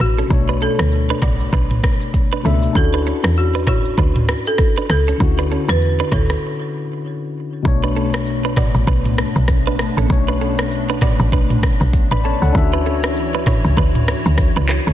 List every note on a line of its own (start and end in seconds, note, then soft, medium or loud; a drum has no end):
0.00 0.23 A1 medium
0.00 0.25 B2 medium
0.00 0.26 A3 medium
0.00 0.30 D4 medium
0.00 0.58 F#4 medium
0.00 0.28 C#5 medium
0.00 cross-stick medium
0.00 shaker medium
0.18 0.27 C#4 medium
0.18 0.27 A4 medium
0.18 shaker loud
0.28 0.67 B1 loud
0.28 2.39 B2 medium
0.28 2.40 A3 medium
0.28 2.41 D4 medium
0.28 kick loud
0.28 shaker medium
0.33 2.42 C#5 medium
0.48 0.58 D4 medium
0.48 0.57 B4 medium
0.48 shaker medium
0.61 0.74 C#4 medium
0.61 0.73 A4 medium
0.61 1.19 A4 medium
0.61 shaker medium
0.79 1.12 D2 medium
0.79 cross-stick loud
0.79 shaker medium
0.92 shaker medium
1.09 1.19 D4 medium
1.09 1.18 B4 medium
1.09 shaker soft
1.22 1.46 B1 loud
1.22 1.35 F#4 medium
1.22 1.34 D5 medium
1.22 kick medium
1.22 cross-stick medium
1.22 mid tom loud
1.22 shaker medium
1.40 shaker loud
1.53 1.90 B1 loud
1.53 1.74 D4 medium
1.53 1.73 B4 medium
1.53 kick loud
1.53 shaker medium
1.70 mid tom medium
1.70 shaker medium
1.83 kick medium
1.83 cross-stick loud
1.83 shaker medium
2.01 shaker medium
2.14 kick medium
2.14 shaker medium
2.32 2.41 D4 medium
2.32 2.41 B4 medium
2.32 shaker soft
2.43 2.68 C#2 medium
2.43 2.75 B2 medium
2.43 2.75 A3 medium
2.43 2.57 C#4 medium
2.43 2.72 D4 medium
2.43 2.57 A4 medium
2.43 2.76 E5 medium
2.43 shaker medium
2.63 shaker loud
2.73 3.12 D2 loud
2.73 5.16 C#4 medium
2.73 5.15 D4 medium
2.73 5.17 E4 medium
2.73 3.39 A4 medium
2.73 kick loud
2.73 shaker medium
2.78 5.17 F#4 medium
2.93 3.03 D4 medium
2.93 3.02 B4 medium
2.93 shaker medium
3.06 3.19 C#4 medium
3.06 3.18 A4 medium
3.06 shaker medium
3.24 3.69 E2 medium
3.24 cross-stick loud
3.24 shaker medium
3.37 3.66 F#4 medium
3.37 shaker medium
3.54 3.64 D4 medium
3.54 3.63 B4 medium
3.54 shaker soft
3.67 3.90 D2 medium
3.67 3.80 E4 medium
3.67 4.43 F#4 medium
3.67 3.79 C#5 medium
3.67 kick loud
3.67 cross-stick medium
3.67 mid tom medium
3.67 shaker medium
3.85 shaker loud
3.98 4.35 D2 medium
3.98 4.19 D4 medium
3.98 4.18 B4 medium
3.98 kick loud
3.98 shaker medium
4.15 mid tom medium
4.15 shaker soft
4.28 cross-stick loud
4.28 shaker medium
4.46 4.90 A4 loud
4.46 shaker medium
4.58 kick medium
4.58 cross-stick medium
4.58 shaker medium
4.77 4.86 D4 medium
4.77 4.86 B4 medium
4.77 shaker medium
4.90 5.13 C#2 medium
4.90 5.72 A4 loud
4.90 cross-stick medium
4.90 shaker medium
5.08 5.17 C#4 medium
5.08 5.16 A4 medium
5.08 shaker loud
5.18 5.57 D2 loud
5.18 7.60 D3 medium
5.18 7.61 C#4 medium
5.18 7.62 E4 medium
5.18 kick loud
5.18 shaker medium
5.23 7.62 F#4 medium
5.38 5.47 D4 medium
5.38 5.47 B4 medium
5.38 shaker medium
5.51 5.63 C#4 medium
5.51 5.63 A4 medium
5.51 shaker medium
5.68 6.02 E2 medium
5.68 6.14 B4 loud
5.68 cross-stick loud
5.68 shaker medium
5.82 shaker medium
5.99 6.09 D4 medium
5.99 6.08 B4 medium
5.99 shaker soft
6.12 6.35 D2 loud
6.12 6.25 E4 medium
6.12 7.00 A4 medium
6.12 6.24 C#5 medium
6.12 kick loud
6.12 cross-stick loud
6.12 mid tom loud
6.12 shaker medium
6.29 cross-stick medium
6.29 shaker loud
7.63 8.71 B1 loud
7.63 10.05 B2 medium
7.63 10.06 A3 medium
7.63 12.51 A3 medium
7.63 12.51 B3 medium
7.63 12.51 D4 medium
7.63 10.06 D4 medium
7.63 kick loud
7.63 shaker medium
7.68 10.07 C#5 medium
7.83 7.92 D4 medium
7.83 7.92 B4 medium
7.83 shaker medium
7.96 8.08 C#4 medium
7.96 8.08 A4 medium
7.96 shaker medium
8.13 cross-stick loud
8.13 shaker medium
8.26 shaker medium
8.44 8.54 D4 medium
8.44 8.53 B4 medium
8.44 shaker soft
8.56 8.70 F#4 medium
8.56 8.69 D5 medium
8.56 kick medium
8.56 cross-stick loud
8.56 mid tom loud
8.56 shaker medium
8.74 8.84 A1 medium
8.74 shaker medium
8.87 9.24 B1 medium
8.87 9.08 D4 medium
8.87 9.08 B4 medium
8.87 kick loud
8.87 shaker medium
9.05 mid tom medium
9.05 shaker medium
9.18 cross-stick loud
9.18 shaker medium
9.36 9.68 B1 loud
9.36 shaker medium
9.48 kick medium
9.48 cross-stick medium
9.48 shaker medium
9.66 9.90 A1 loud
9.66 9.76 D4 medium
9.66 9.75 B4 medium
9.66 shaker soft
9.79 cross-stick medium
9.79 shaker medium
9.97 10.07 A1 medium
9.97 10.07 C#4 medium
9.97 10.06 A4 medium
9.97 shaker loud
10.07 11.16 B1 loud
10.07 12.50 B2 medium
10.07 12.50 A3 medium
10.07 10.18 C#4 medium
10.07 kick loud
10.07 shaker medium
10.12 11.61 C#5 medium
10.17 12.51 D4 medium
10.28 10.37 D4 medium
10.28 10.37 B4 medium
10.28 shaker medium
10.41 10.53 C#4 medium
10.41 10.53 A4 medium
10.41 shaker medium
10.58 cross-stick loud
10.58 shaker medium
10.71 shaker medium
10.89 10.98 D4 medium
10.89 10.98 B4 medium
10.89 shaker soft
11.01 11.14 F#4 medium
11.01 11.14 D5 medium
11.01 kick loud
11.01 cross-stick loud
11.01 mid tom loud
11.01 shaker medium
11.19 11.34 A1 loud
11.19 shaker loud
11.32 11.69 B1 loud
11.32 11.53 D4 medium
11.32 11.53 B4 medium
11.32 kick loud
11.32 shaker medium
11.50 mid tom medium
11.50 shaker soft
11.63 kick medium
11.63 cross-stick loud
11.63 shaker medium
11.81 12.04 B1 medium
11.81 shaker medium
11.93 kick medium
11.93 shaker medium
12.11 12.35 A1 medium
12.11 12.21 D4 medium
12.11 12.20 B4 medium
12.11 12.24 D5 medium
12.11 12.24 B5 medium
12.11 shaker medium
12.24 12.37 C#4 medium
12.24 12.36 A4 medium
12.24 12.41 C#5 medium
12.24 12.41 A5 medium
12.24 shaker medium
12.42 12.52 C#2 medium
12.42 12.71 A4 medium
12.42 12.71 F#5 medium
12.42 shaker loud
12.52 13.60 D2 loud
12.52 14.93 E3 medium
12.52 14.93 C#4 medium
12.52 14.93 D4 medium
12.52 14.93 E4 medium
12.52 12.63 E4 medium
12.52 14.93 F#4 medium
12.52 14.93 C#5 medium
12.52 kick loud
12.52 shaker medium
12.57 14.93 E5 medium
12.62 14.93 F#4 medium
12.72 12.82 D4 medium
12.72 12.82 B4 medium
12.72 shaker medium
12.86 12.98 C#4 medium
12.86 12.98 A4 medium
12.86 shaker medium
13.03 cross-stick loud
13.03 shaker loud
13.16 shaker medium
13.34 13.43 D4 medium
13.34 13.43 B4 medium
13.34 shaker soft
13.46 13.59 E4 medium
13.46 13.59 C#5 medium
13.46 kick medium
13.46 cross-stick loud
13.46 mid tom loud
13.46 shaker medium
13.64 13.74 C#2 medium
13.64 shaker medium
13.77 14.14 D2 medium
13.77 13.98 D4 medium
13.77 13.98 B4 medium
13.77 kick loud
13.77 shaker medium
13.95 mid tom medium
13.95 shaker medium
14.08 cross-stick loud
14.08 shaker medium
14.26 14.49 D2 loud
14.26 shaker medium
14.38 kick medium
14.38 cross-stick medium
14.38 shaker medium
14.56 14.80 C#2 medium
14.56 14.66 D4 medium
14.56 14.65 B4 medium
14.56 shaker medium
14.69 cross-stick medium
14.69 clap medium
14.69 shaker medium
14.87 14.93 C#2 medium
14.87 14.93 C#4 medium
14.87 14.93 A4 medium
14.87 shaker loud